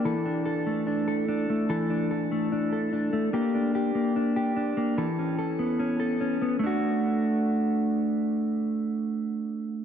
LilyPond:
\new Staff \with { instrumentName = "Clean electric guitar" } { \time 4/4 \key d \major \tempo 4 = 73 <e a'>16 d'16 a'16 a16 d'16 a'16 d'16 a16 <e a'>16 d'16 a'16 a16 d'16 a'16 d'16 a16 | <bes g'>16 d'16 g'16 bes16 d'16 g'16 d'16 bes16 <e a'>16 cis'16 a'16 b16 cis'16 a'16 cis'16 b16 | <a d' fis'>1 | }